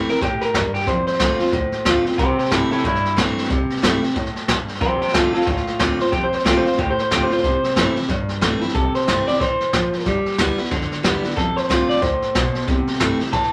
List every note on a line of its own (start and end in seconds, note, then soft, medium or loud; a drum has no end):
0.00 0.19 C3 medium
0.09 0.23 C4 medium
0.09 0.21 E4 medium
0.09 0.22 A#4 medium
0.09 muted upright bass stroke medium
0.09 snare soft
0.15 snare soft
0.21 0.35 A2 loud
0.21 0.54 A2 loud
0.21 0.41 G4 medium
0.21 kick loud
0.21 snare soft
0.41 0.73 A#4 medium
0.41 muted upright bass stroke medium
0.41 snare soft
0.54 0.68 E2 medium
0.54 0.86 G2 medium
0.54 kick medium
0.54 snare loud
0.54 hi-hat pedal medium
0.74 0.87 G4 medium
0.74 muted upright bass stroke medium
0.74 snare soft
0.81 snare soft
0.87 1.00 F1 medium
0.87 1.51 F2 medium
0.87 1.06 C5 medium
0.87 kick loud
0.87 snare soft
1.07 2.03 C5 loud
1.07 snare soft
1.13 snare soft
1.20 1.33 C2 medium
1.20 1.39 D3 medium
1.20 1.39 A3 loud
1.20 1.40 C4 loud
1.20 1.38 F4 loud
1.20 kick medium
1.20 snare loud
1.20 hi-hat pedal medium
1.39 1.53 C4 medium
1.39 1.52 F4 medium
1.39 muted upright bass stroke medium
1.39 snare soft
1.46 snare soft
1.52 1.66 D2 loud
1.52 2.16 A2 loud
1.52 kick loud
1.52 snare soft
1.72 muted upright bass stroke medium
1.72 snare soft
1.85 1.99 D2 medium
1.85 2.04 D3 loud
1.85 2.05 A3 medium
1.85 2.05 C4 medium
1.85 2.04 F4 medium
1.85 kick medium
1.85 snare loud
1.85 hi-hat pedal medium
2.05 2.19 C4 soft
2.05 2.18 F4 medium
2.05 muted upright bass stroke medium
2.05 snare soft
2.12 snare soft
2.18 2.32 C2 medium
2.18 2.82 C3 medium
2.18 2.38 G4 medium
2.18 2.38 C5 medium
2.18 kick loud
2.18 snare soft
2.38 2.51 G4 medium
2.38 2.51 C5 medium
2.38 muted upright bass stroke medium
2.38 snare soft
2.45 snare soft
2.51 2.65 G2 medium
2.51 2.70 E3 loud
2.51 2.71 A3 loud
2.51 2.71 C4 loud
2.51 2.70 E4 medium
2.51 2.70 E4 loud
2.51 2.70 A4 medium
2.51 kick medium
2.51 snare loud
2.51 hi-hat pedal medium
2.71 2.85 C4 soft
2.71 2.84 E4 medium
2.71 2.83 E4 medium
2.71 2.84 A4 loud
2.71 muted upright bass stroke medium
2.71 snare soft
2.78 snare soft
2.84 3.48 G2 loud
2.84 2.97 A2 loud
2.84 3.16 E4 loud
2.84 kick loud
2.84 snare soft
2.95 snare soft
3.05 muted upright bass stroke medium
3.05 snare soft
3.16 3.30 A2 medium
3.16 3.48 E3 medium
3.16 3.49 A3 loud
3.16 3.49 C4 loud
3.16 3.49 E4 loud
3.16 kick medium
3.16 snare loud
3.16 hi-hat pedal medium
3.38 snare soft
3.44 snare soft
3.50 3.63 C2 medium
3.50 4.13 C3 medium
3.50 kick loud
3.50 snare soft
3.70 muted upright bass stroke medium
3.70 snare soft
3.76 snare soft
3.82 3.96 G2 medium
3.82 4.02 E3 medium
3.82 4.02 A3 loud
3.82 4.02 C4 loud
3.82 4.01 E4 loud
3.82 kick medium
3.82 snare loud
3.82 hi-hat pedal medium
4.02 4.16 C4 soft
4.02 4.15 E4 medium
4.02 snare soft
4.10 snare soft
4.15 4.29 A2 loud
4.15 4.47 A2 loud
4.15 kick loud
4.15 snare soft
4.26 snare soft
4.36 muted upright bass stroke medium
4.36 snare soft
4.48 4.80 G2 medium
4.48 4.62 A2 medium
4.48 kick medium
4.48 snare loud
4.48 hi-hat pedal loud
4.68 muted upright bass stroke medium
4.68 snare soft
4.75 snare soft
4.81 4.94 F1 medium
4.81 5.44 F2 medium
4.81 5.01 G4 medium
4.81 5.00 C5 medium
4.81 kick loud
4.81 snare soft
5.02 5.13 G4 medium
5.02 5.14 C5 medium
5.02 muted upright bass stroke medium
5.02 snare soft
5.08 snare soft
5.13 5.27 C2 medium
5.13 5.33 D3 loud
5.13 5.33 A3 loud
5.13 5.34 C4 loud
5.13 5.32 F4 medium
5.13 5.32 F4 loud
5.13 5.33 A4 medium
5.13 kick medium
5.13 snare loud
5.13 hi-hat pedal medium
5.33 5.47 C4 soft
5.33 5.46 F4 medium
5.33 5.45 F4 medium
5.33 5.47 A4 medium
5.33 muted upright bass stroke medium
5.33 snare soft
5.41 snare soft
5.46 5.60 D2 loud
5.46 6.10 A2 loud
5.46 5.79 F4 loud
5.46 kick loud
5.46 snare soft
5.57 snare soft
5.67 muted upright bass stroke medium
5.67 snare soft
5.79 5.93 D2 medium
5.79 5.99 D3 medium
5.79 5.99 A3 medium
5.79 5.99 C4 loud
5.79 5.98 F4 loud
5.79 kick medium
5.79 snare loud
5.79 hi-hat pedal medium
5.99 6.13 C4 soft
5.99 6.12 F4 medium
5.99 6.12 C5 loud
5.99 muted upright bass stroke medium
5.99 snare soft
6.06 snare soft
6.12 6.26 F1 medium
6.12 6.76 F2 medium
6.12 6.23 G4 medium
6.12 kick loud
6.12 snare soft
6.24 6.34 C5 loud
6.32 6.46 C5 medium
6.32 muted upright bass stroke medium
6.32 snare soft
6.39 snare soft
6.44 6.59 C2 medium
6.44 6.64 D3 medium
6.44 6.65 A3 loud
6.44 6.65 C4 loud
6.44 6.64 F4 loud
6.44 6.56 G4 medium
6.44 kick medium
6.44 snare loud
6.44 hi-hat pedal medium
6.57 6.67 C5 loud
6.65 6.79 C4 medium
6.65 6.78 F4 medium
6.65 6.79 C5 medium
6.65 muted upright bass stroke medium
6.65 snare soft
6.72 snare soft
6.78 6.91 D2 loud
6.78 7.42 A2 loud
6.78 6.90 G4 loud
6.78 kick loud
6.78 snare soft
6.90 7.01 C5 loud
6.98 7.12 C5 medium
6.98 muted upright bass stroke medium
6.98 snare soft
7.11 7.24 D2 medium
7.11 7.30 D3 medium
7.11 7.30 A3 loud
7.11 7.31 C4 loud
7.11 7.29 F4 loud
7.11 7.22 G4 loud
7.11 kick loud
7.11 snare loud
7.11 hi-hat pedal loud
7.23 7.32 C5 loud
7.30 7.44 C4 medium
7.30 7.43 F4 medium
7.30 7.97 C5 loud
7.30 muted upright bass stroke medium
7.30 snare soft
7.38 snare soft
7.43 7.57 C2 loud
7.43 8.07 C3 medium
7.43 kick loud
7.43 snare soft
7.64 snare soft
7.70 snare soft
7.76 7.90 G2 medium
7.76 7.95 E3 loud
7.76 7.96 A3 loud
7.76 7.96 C4 medium
7.76 7.95 E4 loud
7.76 kick medium
7.76 snare loud
7.76 hi-hat pedal medium
7.96 8.10 C4 soft
7.96 8.09 E4 medium
7.96 muted upright bass stroke medium
7.96 snare soft
8.02 snare soft
8.08 8.73 G2 loud
8.08 8.22 A2 loud
8.08 kick loud
8.08 snare soft
8.29 muted upright bass stroke medium
8.29 snare soft
8.41 8.55 A2 medium
8.41 8.61 E3 medium
8.41 8.61 A3 loud
8.41 8.62 C4 loud
8.41 8.60 E4 medium
8.41 kick medium
8.41 snare loud
8.41 hi-hat pedal medium
8.61 8.75 C4 soft
8.61 8.74 E4 medium
8.61 muted upright bass stroke medium
8.61 snare soft
8.69 snare soft
8.75 8.88 C2 loud
8.75 9.38 C3 medium
8.75 8.94 A4 medium
8.75 kick loud
8.75 snare soft
8.95 9.27 C5 medium
8.95 snare soft
9.01 snare soft
9.07 9.21 G2 medium
9.07 9.27 E3 medium
9.07 9.27 A3 medium
9.07 9.27 C4 loud
9.07 9.26 E4 loud
9.07 kick medium
9.07 snare loud
9.07 hi-hat pedal medium
9.27 9.41 C4 medium
9.27 9.40 E4 medium
9.27 9.40 D5 loud
9.27 muted upright bass stroke medium
9.27 snare soft
9.34 snare soft
9.40 9.54 A2 loud
9.40 9.73 E3 loud
9.40 10.04 C5 loud
9.40 kick loud
9.40 snare soft
9.60 muted upright bass stroke medium
9.60 snare soft
9.73 9.87 A2 medium
9.73 10.05 F3 medium
9.73 kick loud
9.73 snare loud
9.73 hi-hat pedal loud
9.93 muted upright bass stroke medium
9.93 snare soft
9.99 snare soft
10.06 10.19 G1 loud
10.06 10.38 G3 medium
10.06 kick loud
10.06 snare soft
10.26 muted upright bass stroke medium
10.26 snare soft
10.32 snare soft
10.38 10.52 D2 medium
10.38 10.58 G3 medium
10.38 10.58 B3 medium
10.38 10.57 E4 loud
10.38 kick medium
10.38 snare loud
10.38 hi-hat pedal loud
10.58 10.72 B3 soft
10.58 10.71 E4 medium
10.58 muted upright bass stroke medium
10.58 snare soft
10.64 snare soft
10.71 10.84 F2 loud
10.71 11.35 D3 loud
10.71 kick loud
10.71 snare soft
10.81 snare soft
10.91 muted upright bass stroke medium
10.91 snare soft
11.03 11.17 E2 medium
11.03 11.23 G3 medium
11.03 11.23 B3 medium
11.03 11.22 E4 loud
11.03 kick medium
11.03 snare loud
11.03 hi-hat pedal loud
11.23 11.37 B3 soft
11.23 11.36 E4 medium
11.23 muted upright bass stroke medium
11.23 snare soft
11.31 snare soft
11.36 11.50 F1 medium
11.36 12.00 F2 medium
11.36 11.56 A4 loud
11.36 kick loud
11.36 snare soft
11.56 11.88 C5 medium
11.56 muted upright bass stroke medium
11.56 snare soft
11.63 snare soft
11.69 11.83 C2 medium
11.69 12.01 D3 medium
11.69 12.01 A3 loud
11.69 12.02 C4 loud
11.69 12.02 F4 loud
11.69 kick medium
11.69 snare loud
11.69 hi-hat pedal medium
11.89 12.02 D5 loud
11.89 muted upright bass stroke medium
11.89 snare soft
11.96 snare soft
12.02 12.15 D2 loud
12.02 12.34 A2 loud
12.02 12.66 C5 loud
12.02 kick loud
12.02 snare soft
12.22 muted upright bass stroke medium
12.22 snare soft
12.35 12.48 B1 medium
12.35 12.67 B2 loud
12.35 kick medium
12.35 snare loud
12.35 hi-hat pedal medium
12.55 snare soft
12.61 snare soft
12.68 12.81 C2 loud
12.68 13.31 C3 loud
12.68 kick loud
12.68 snare soft
12.87 muted upright bass stroke medium
12.87 snare soft
12.93 snare soft
13.00 13.13 G2 medium
13.00 13.19 E3 medium
13.00 13.19 A3 loud
13.00 13.20 C4 loud
13.00 13.18 E4 loud
13.00 kick medium
13.00 snare loud
13.00 hi-hat pedal medium
13.19 13.33 C4 soft
13.19 13.32 E4 medium
13.19 muted upright bass stroke medium
13.19 snare soft
13.27 snare soft
13.33 13.46 A2 loud
13.33 13.53 E3 loud
13.33 13.53 A5 loud
13.33 kick loud
13.33 snare soft
13.43 snare soft